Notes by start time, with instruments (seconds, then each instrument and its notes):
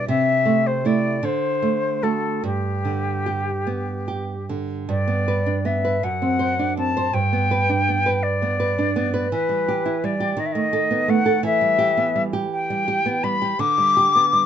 0.08 nylon-string guitar C3, flute E5
0.45 nylon-string guitar A3
0.67 flute C5
0.85 nylon-string guitar A3 E4, flute D5
1.23 nylon-string guitar D3, flute C5
1.62 nylon-string guitar A3
2.03 nylon-string guitar A3 F#4, flute A4
2.44 nylon-string guitar G2, flute G4
2.85 nylon-string guitar D3
3.26 nylon-string guitar G4
3.67 nylon-string guitar B3
4.08 nylon-string guitar G4
4.49 nylon-string guitar D3
4.89 nylon-string guitar G2, flute D5
5.08 nylon-string guitar B3
5.28 nylon-string guitar B4
5.46 nylon-string guitar D4
5.65 nylon-string guitar B3, flute E5
5.85 nylon-string guitar B4
6.03 nylon-string guitar F#2, flute F#5
6.22 nylon-string guitar C4
6.39 nylon-string guitar C5
6.59 nylon-string guitar D4
6.77 nylon-string guitar C4, flute A5
6.97 nylon-string guitar C5
7.13 nylon-string guitar G2, flute G5
7.33 nylon-string guitar B3
7.51 nylon-string guitar B4
7.69 nylon-string guitar D4
7.89 nylon-string guitar B3
8.06 nylon-string guitar B4
8.23 flute D5
8.42 nylon-string guitar B3
8.60 nylon-string guitar B4
8.78 nylon-string guitar D4
8.96 nylon-string guitar B3
9.14 nylon-string guitar B4
9.32 nylon-string guitar E3, flute B4
9.49 nylon-string guitar G3
9.68 nylon-string guitar G4
9.86 nylon-string guitar E4
10.04 nylon-string guitar G3, flute D5
10.20 nylon-string guitar G4
10.37 nylon-string guitar D#3, flute D#5
10.46 flute E5
10.52 nylon-string guitar A3, flute D#5
10.73 nylon-string guitar A4
10.91 nylon-string guitar B3
11.08 nylon-string guitar A3, flute F#5
11.26 nylon-string guitar A4
11.43 nylon-string guitar E3, flute E5
11.61 nylon-string guitar G3
11.78 nylon-string guitar G4
11.97 nylon-string guitar B3
12.16 nylon-string guitar G3
12.33 nylon-string guitar G4
12.52 flute G5
12.70 nylon-string guitar G3
12.88 nylon-string guitar G4
13.06 nylon-string guitar B3
13.24 nylon-string guitar G3, flute B5
13.42 nylon-string guitar G4
13.59 nylon-string guitar D3, flute D6
13.78 nylon-string guitar G3
13.97 nylon-string guitar G4
14.15 nylon-string guitar B3
14.33 nylon-string guitar G3